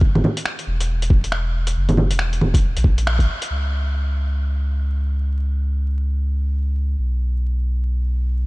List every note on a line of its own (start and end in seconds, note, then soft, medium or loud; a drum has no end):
0.01 0.22 F#1 loud
0.01 kick loud
0.15 low bongo medium
0.24 low bongo medium
0.37 closed hi-hat medium
0.45 finger snap loud
0.59 closed hi-hat soft
0.67 1.75 E1 medium
0.80 closed hi-hat medium
1.02 closed hi-hat soft
1.10 kick loud
1.24 closed hi-hat medium
1.32 finger snap loud
1.67 closed hi-hat medium
1.77 2.13 F#1 loud
1.89 closed hi-hat soft
1.89 low bongo medium
1.97 low bongo medium
2.11 2.40 E1 medium
2.11 closed hi-hat medium
2.19 finger snap loud
2.33 closed hi-hat soft
2.41 2.76 E1 medium
2.41 low bongo medium
2.54 kick loud
2.54 closed hi-hat medium
2.77 3.27 A#1 medium
2.77 closed hi-hat soft
2.84 kick loud
2.98 closed hi-hat medium
3.07 finger snap loud
3.19 kick medium
3.19 closed hi-hat soft
3.42 closed hi-hat medium
3.50 6.96 C#2 medium
6.98 8.46 B1 medium